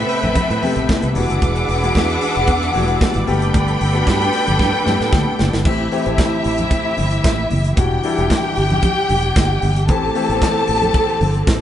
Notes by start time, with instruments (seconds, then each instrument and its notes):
Already playing: grand piano C3 A3 B3 G4, string section C4 A4 B4 E5 G5 B5
0.09 open hi-hat
0.23 fingered electric bass A1, closed hi-hat, low conga
0.35 kick, closed hi-hat, muted conga, low conga
0.50 fingered electric bass A2, closed hi-hat
0.62 grand piano C3 A3 B3 G4, open hi-hat, muted conga, low conga
0.76 fingered electric bass A1, closed hi-hat
0.89 kick, snare, clap, high conga
1.02 fingered electric bass C2, closed hi-hat
1.14 fingered electric bass E1, grand piano E3 G3 D4 F#4, string section D4 G#4 B4 D5 E5 F#5 D6, open hi-hat, high conga
1.22 grand piano G#3
1.30 fingered electric bass F#1, closed hi-hat
1.42 fingered electric bass E1, kick, closed hi-hat
1.56 closed hi-hat
1.69 fingered electric bass E1, open hi-hat
1.82 grand piano E3 G#3 D4 F#4, closed hi-hat
1.95 fingered electric bass E2, kick, snare, clap, high conga
2.10 closed hi-hat
2.21 open hi-hat
2.35 fingered electric bass E1, closed hi-hat
2.47 fingered electric bass E2, kick, closed hi-hat, muted conga
2.63 closed hi-hat
2.74 fingered electric bass E1, grand piano E3 G3 D4 F#4, open hi-hat, muted conga, low conga
2.81 grand piano G#3
2.88 closed hi-hat
3.01 kick, snare, clap, high conga
3.14 fingered electric bass G#1, closed hi-hat
3.26 fingered electric bass G1, grand piano G3 A3 B3 G4, string section D4 A4 B4 G5 B5, open hi-hat, high conga
3.42 fingered electric bass F#1, closed hi-hat
3.54 fingered electric bass G1, kick, closed hi-hat, muted conga
3.68 closed hi-hat
3.81 fingered electric bass G1, open hi-hat
3.93 grand piano G3 A3 B3 F#4, closed hi-hat
4.01 grand piano G4
4.07 fingered electric bass G2, kick, snare, clap, high conga
4.22 closed hi-hat
4.33 open hi-hat
4.47 fingered electric bass G1, closed hi-hat, low conga
4.59 fingered electric bass G2, kick, snare, muted conga, low conga
4.85 fingered electric bass G2, grand piano G3 A3 B3 G4, snare, muted conga, low conga
5.01 fingered electric bass A2, snare
5.13 fingered electric bass D2, kick, snare, high conga
5.39 fingered electric bass F#1, snare, high conga
5.53 fingered electric bass G1, snare
5.65 fingered electric bass A1, grand piano E3 A3 C4 G4, string section E3 A3 C4 E4 G4 E5, kick, crash, muted conga
5.92 grand piano E3 A3 C4 G4, open hi-hat
6.05 fingered electric bass A1, grand piano E3 A3 C4 G4, closed hi-hat
6.18 kick, snare, clap, closed hi-hat, high conga
6.44 fingered electric bass A1, open hi-hat
6.58 closed hi-hat, low conga
6.71 kick, closed hi-hat, muted conga
6.97 fingered electric bass G1, open hi-hat, muted conga, low conga
7.11 closed hi-hat
7.24 fingered electric bass A1, kick, snare, clap, closed hi-hat, high conga
7.50 fingered electric bass F#1, open hi-hat, high conga
7.64 closed hi-hat
7.76 fingered electric bass E1, grand piano E3 G3 D4 F#4, string section G3 D4 G4 G5, kick, closed hi-hat, muted conga
8.04 grand piano E3 G3 D4 E4, open hi-hat
8.17 fingered electric bass E1, grand piano E3 G3 D4 G4, closed hi-hat
8.30 kick, snare, clap, closed hi-hat, high conga
8.56 fingered electric bass G1, open hi-hat
8.70 closed hi-hat, low conga
8.82 kick, closed hi-hat, muted conga, low conga
9.09 fingered electric bass E1, open hi-hat, muted conga, low conga
9.22 closed hi-hat
9.36 fingered electric bass G1, kick, snare, clap, closed hi-hat, high conga
9.62 fingered electric bass G1, open hi-hat, high conga
9.76 closed hi-hat
9.88 fingered electric bass A1, grand piano E3 A3 C4 G4, string section A3 C4 G4 A4 A5, kick, closed hi-hat, muted conga
10.15 grand piano E3 A3 C4 G4, open hi-hat
10.29 fingered electric bass A1, grand piano E3 A3 B3 G4, closed hi-hat
10.37 grand piano C4
10.42 kick, snare, clap, closed hi-hat, high conga
10.68 fingered electric bass A1, open hi-hat
10.82 closed hi-hat, low conga
10.94 kick, closed hi-hat, muted conga
11.21 fingered electric bass G1, open hi-hat, muted conga, low conga
11.34 closed hi-hat
11.47 fingered electric bass A1, kick, snare, clap, closed hi-hat, high conga